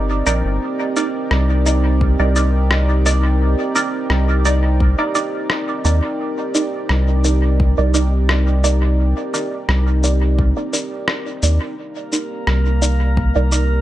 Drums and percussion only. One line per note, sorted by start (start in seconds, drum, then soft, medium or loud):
0.26 shaker soft
0.96 shaker soft
1.31 cross-stick medium
1.66 shaker soft
2.01 kick medium
2.36 shaker soft
2.71 cross-stick medium
3.06 shaker soft
3.75 shaker soft
4.10 cross-stick medium
4.45 shaker soft
4.80 kick medium
5.15 shaker soft
5.50 cross-stick medium
5.85 shaker soft
6.55 shaker soft
6.89 cross-stick medium
7.24 shaker soft
7.60 kick medium
7.94 shaker soft
8.29 cross-stick medium
8.64 shaker soft
9.34 shaker soft
9.69 cross-stick medium
10.04 shaker soft
10.39 kick loud
10.73 shaker medium
11.08 cross-stick medium
11.43 shaker soft
12.13 shaker medium
12.47 cross-stick medium
12.82 shaker medium
13.17 kick loud
13.52 shaker medium